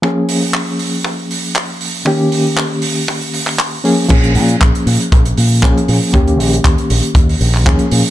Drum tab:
CC |----------------|----------------|x---------------|----------------|
HH |--o---o---o---o-|--o---o--oo---o-|xxoxxxoxxxo--xo-|xxoxxxoxxoo--xo-|
CP |----x-------x---|----x------xx---|----x-------x---|----x------xx---|
BD |o---o---o---o---|o---o---o---o---|o---o---o---o---|o---o---o---o---|